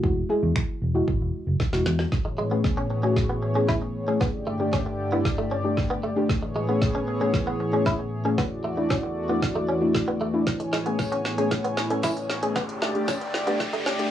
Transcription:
0.03 fingered electric bass E1, synth pluck G#3 E4 F#4, kick
0.29 synth pluck G#3 E4 G#4
0.43 fingered electric bass E2
0.56 finger snap, kick
0.82 fingered electric bass E1
0.94 synth pluck G#3 E4 F#4
1.08 fingered electric bass G#1, kick
1.21 fingered electric bass E1
1.47 fingered electric bass F#1
1.60 kick, snare
1.73 fingered electric bass E1, synth pluck G#3 E4 F#4, snare
1.86 fingered electric bass E2, snare
1.99 snare
2.12 analog synth pad A2 E3 B3 G#4 C#5, kick, snare
2.25 muted clean electric guitar stroke
2.38 clean electric guitar G#3
2.51 synth pluck A3 C#4 G#4, clean electric guitar B3
2.64 kick, snare
2.77 clean electric guitar C#4
2.90 muted clean electric guitar stroke
3.03 synth pluck A3 C#4 F#4, clean electric guitar C#4
3.16 kick, snare
3.29 clean electric guitar B3
3.43 muted clean electric guitar stroke
3.55 synth pluck A3 C#4 G#4, clean electric guitar C#4
3.69 clean electric guitar E4, kick, snare
3.82 muted clean electric guitar stroke
4.08 synth pluck A3 C#4 G#4, clean electric guitar C#4
4.21 analog synth pad G2 D3 A3 G4 D5, clean electric guitar B3, kick, snare
4.47 clean electric guitar A3
4.60 synth pluck A3 D4 G4, muted clean electric guitar stroke
4.73 clean electric guitar C#4, kick, snare
4.86 muted clean electric guitar stroke
5.12 synth pluck A3 D4 E4, clean electric guitar B3
5.25 muted clean electric guitar stroke, kick, snare
5.38 clean electric guitar A3
5.51 clean electric guitar C#4
5.64 synth pluck A3 D4 G4
5.77 muted clean electric guitar stroke, kick, snare
5.90 clean electric guitar B3
6.03 clean electric guitar A3
6.16 synth pluck A3 D4 G4
6.29 analog synth pad A2 E3 B3 G#4 C#5, kick, snare
6.43 muted clean electric guitar stroke
6.56 clean electric guitar G#3
6.68 synth pluck A3 C#4 G#4, clean electric guitar B3
6.82 kick, snare
6.95 clean electric guitar C#4
7.08 muted clean electric guitar stroke
7.21 synth pluck A3 C#4 G#4, clean electric guitar C#4
7.34 kick, snare
7.47 clean electric guitar B3
7.60 muted clean electric guitar stroke
7.73 synth pluck A3 C#4 G#4, clean electric guitar C#4
7.86 clean electric guitar E4, kick, snare
7.99 muted clean electric guitar stroke
8.25 synth pluck A3 C#4 G#4, clean electric guitar C#4
8.38 analog synth pad E2 E3 A3 F#4 D5, clean electric guitar B3, kick, snare
8.64 clean electric guitar A3
8.77 synth pluck A3 D4 E4, muted clean electric guitar stroke
8.90 clean electric guitar C#4, kick, snare
9.03 muted clean electric guitar stroke
9.29 synth pluck A3 D4 E4, clean electric guitar B3
9.42 muted clean electric guitar stroke, kick, snare
9.56 clean electric guitar A3
9.69 clean electric guitar C#4
9.81 synth pluck A3 D4 E4
9.95 muted clean electric guitar stroke, kick, snare
10.08 clean electric guitar B3
10.21 clean electric guitar A3
10.33 synth pluck A3 D4 E4
10.47 analog synth pad A2 B3 C#5 G#5, kick, snare, closed hi-hat, riser
10.60 muted clean electric guitar stroke, closed hi-hat
10.73 clean electric guitar G#3, snare
10.86 synth pluck A3 C#4 G#4, clean electric guitar B3, closed hi-hat
10.99 kick, snare, closed hi-hat, tambourine
11.12 clean electric guitar C#4, closed hi-hat
11.25 muted clean electric guitar stroke, snare
11.38 synth pluck A3 C#4 G#4, clean electric guitar C#4, closed hi-hat
11.51 kick, snare, closed hi-hat
11.64 clean electric guitar B3, closed hi-hat
11.77 muted clean electric guitar stroke, snare
11.90 synth pluck A3 C#4 A4, clean electric guitar C#4, closed hi-hat
12.03 clean electric guitar E4, kick, snare, closed hi-hat, tambourine
12.17 muted clean electric guitar stroke, closed hi-hat
12.29 snare
12.42 synth pluck A3 C#4 G#4, clean electric guitar C#4, closed hi-hat
12.56 analog synth pad G2 D3 A3 G4 D5, clean electric guitar B3, kick, snare, closed hi-hat
12.69 closed hi-hat
12.82 clean electric guitar A3, snare
12.95 synth pluck A3 D4 G4, muted clean electric guitar stroke, closed hi-hat
13.08 clean electric guitar C#4, kick, snare, closed hi-hat, tambourine
13.21 muted clean electric guitar stroke, closed hi-hat
13.34 snare
13.47 synth pluck A3 D4 G4, clean electric guitar B3, closed hi-hat
13.60 muted clean electric guitar stroke, kick, snare, closed hi-hat
13.73 clean electric guitar A3, closed hi-hat
13.86 clean electric guitar C#4, snare
13.99 synth pluck A3 D4 G4, closed hi-hat

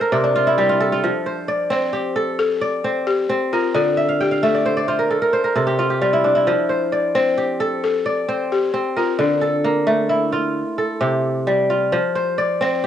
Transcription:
Already playing: kora F4 C5 D5
0.01 kora A#4
0.12 kora C3 D5
0.24 kora D4
0.36 kora F4
0.47 kora E4
0.58 kora G3 G4
0.69 kora F4
0.80 kora A4
0.92 kora F4
1.04 kora F3
1.26 kora C5
1.48 kora D5
1.70 kora C4, balafon C5
1.93 kora G4
2.16 kora A4
2.39 balafon A4
2.61 kora D5
2.84 kora C4 C5
3.07 balafon G4
3.29 kora C4
3.53 balafon F4, kora A#4
3.74 kora D3, balafon F4
3.97 kora E5
4.09 kora F5
4.21 balafon G4, kora G5
4.31 kora F5
4.43 kora A3 E5, balafon A4
4.54 kora D5
4.66 kora C5
4.77 kora D5
4.88 kora F4 C5
4.99 kora A#4
5.10 kora A4
5.22 kora A#4
5.33 kora C5
5.44 kora A#4
5.56 kora C3 A4
5.67 kora G4
5.79 kora F4
5.90 kora G4
6.01 kora G3 F4
6.13 kora E4
6.24 kora D4
6.35 kora E4
6.47 kora F3
6.69 kora C5
6.92 kora D5
7.15 kora C4, balafon C5
7.38 kora G4
7.60 kora A4
7.84 balafon A4
8.06 kora D5
8.28 kora C4 C5
8.52 balafon G4
8.74 kora C4
8.96 balafon F4, kora A#4
9.19 kora D3, balafon D4
9.41 kora A4
9.64 kora A#3
9.87 kora A3
10.09 kora E4
10.32 kora F4
10.78 kora A4
11.01 kora C3 G4
11.47 kora G3
11.70 kora F4
11.92 kora F3
12.15 kora C5
12.38 kora D5
12.61 kora C4, balafon C5
12.84 kora G4

